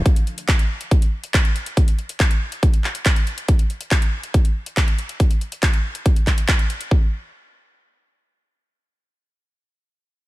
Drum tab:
HH |xxxxxx-xxx-xxxxx|xxxxxx-xxx-xxxxx|xxxxxx-xxx-xxxxx|xxxxxx-xxxxxxxxx|
CP |----x-------x---|----x-----x-x---|----x-------x---|----x-----x-x---|
BD |o---o---o---o---|o---o---o---o---|o---o---o---o---|o---o---o-o-o---|

HH |----------------|----------------|
CP |----------------|----------------|
BD |o---------------|----------------|